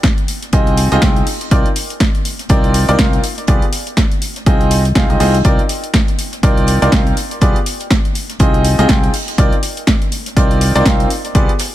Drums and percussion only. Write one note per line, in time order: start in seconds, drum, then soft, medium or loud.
0.03 kick loud
0.03 snare loud
0.03 closed hi-hat medium
0.18 closed hi-hat soft
0.28 closed hi-hat medium
0.28 open hi-hat loud
0.42 snare soft
0.42 closed hi-hat medium
0.52 kick loud
0.52 closed hi-hat medium
0.67 closed hi-hat soft
0.77 closed hi-hat medium
0.77 open hi-hat loud
0.92 snare soft
0.92 closed hi-hat medium
1.02 kick loud
1.02 snare loud
1.02 closed hi-hat medium
1.16 closed hi-hat soft
1.27 open hi-hat loud
1.27 open hi-hat medium
1.41 closed hi-hat medium
1.51 kick loud
1.51 closed hi-hat medium
1.66 closed hi-hat soft
1.75 closed hi-hat medium
1.75 open hi-hat loud
1.90 closed hi-hat medium
2.00 kick loud
2.00 snare loud
2.00 closed hi-hat medium
2.15 closed hi-hat soft
2.25 closed hi-hat medium
2.25 open hi-hat loud
2.39 snare medium
2.39 closed hi-hat soft
2.49 kick loud
2.49 closed hi-hat medium
2.64 closed hi-hat soft
2.74 closed hi-hat medium
2.74 open hi-hat loud
2.89 closed hi-hat medium
2.98 kick loud
2.98 snare loud
2.98 closed hi-hat medium
3.13 closed hi-hat soft
3.23 closed hi-hat medium
3.23 open hi-hat loud
3.38 closed hi-hat medium
3.47 kick loud
3.47 closed hi-hat medium
3.62 closed hi-hat soft
3.72 closed hi-hat medium
3.72 open hi-hat loud
3.87 closed hi-hat soft
3.97 kick loud
3.97 snare loud
3.97 closed hi-hat medium
4.12 closed hi-hat soft
4.22 closed hi-hat medium
4.22 open hi-hat loud
4.36 snare soft
4.36 closed hi-hat soft
4.46 kick loud
4.46 closed hi-hat medium
4.61 closed hi-hat soft
4.71 closed hi-hat medium
4.71 open hi-hat loud
4.85 snare soft
4.85 closed hi-hat medium
4.95 kick loud
4.95 snare loud
4.95 closed hi-hat medium
5.10 closed hi-hat soft
5.20 open hi-hat medium
5.20 open hi-hat loud
5.34 closed hi-hat soft
5.44 kick loud
5.44 closed hi-hat medium
5.59 closed hi-hat soft
5.69 closed hi-hat medium
5.69 open hi-hat loud
5.84 closed hi-hat soft
5.94 kick loud
5.94 snare loud
5.94 closed hi-hat medium
6.08 closed hi-hat soft
6.18 closed hi-hat medium
6.18 open hi-hat medium
6.32 snare soft
6.32 closed hi-hat soft
6.43 kick loud
6.43 closed hi-hat medium
6.57 closed hi-hat soft
6.67 closed hi-hat medium
6.67 open hi-hat loud
6.82 closed hi-hat medium
6.92 kick loud
6.92 snare loud
6.92 closed hi-hat medium
7.07 closed hi-hat soft
7.17 closed hi-hat medium
7.17 open hi-hat medium
7.31 closed hi-hat soft
7.41 kick loud
7.41 closed hi-hat medium
7.56 closed hi-hat soft
7.66 closed hi-hat medium
7.66 open hi-hat loud
7.80 closed hi-hat soft
7.80 closed hi-hat medium
7.90 kick loud
7.90 snare loud
7.90 closed hi-hat medium
8.05 closed hi-hat soft
8.15 closed hi-hat medium
8.15 open hi-hat medium
8.30 snare soft
8.30 closed hi-hat medium
8.39 kick loud
8.39 closed hi-hat loud
8.39 closed hi-hat medium
8.54 closed hi-hat soft
8.65 closed hi-hat medium
8.65 open hi-hat loud
8.78 snare soft
8.78 closed hi-hat medium
8.88 kick loud
8.88 snare loud
8.88 closed hi-hat medium
9.04 closed hi-hat soft
9.14 open hi-hat medium
9.28 closed hi-hat medium
9.38 kick loud
9.38 closed hi-hat medium
9.53 closed hi-hat soft
9.63 closed hi-hat medium
9.63 open hi-hat loud
9.77 closed hi-hat medium
9.87 kick loud
9.87 snare loud
9.87 closed hi-hat medium
10.02 closed hi-hat soft
10.12 closed hi-hat medium
10.12 open hi-hat medium
10.26 snare soft
10.26 closed hi-hat medium
10.37 kick loud
10.37 closed hi-hat medium
10.51 closed hi-hat soft
10.61 closed hi-hat medium
10.61 open hi-hat loud
10.76 closed hi-hat medium
10.85 kick loud
10.85 snare loud
10.85 closed hi-hat medium
11.00 closed hi-hat soft
11.10 closed hi-hat medium
11.10 open hi-hat medium
11.25 closed hi-hat medium
11.35 kick loud
11.35 closed hi-hat medium
11.49 closed hi-hat soft
11.59 snare loud
11.59 closed hi-hat medium
11.59 open hi-hat loud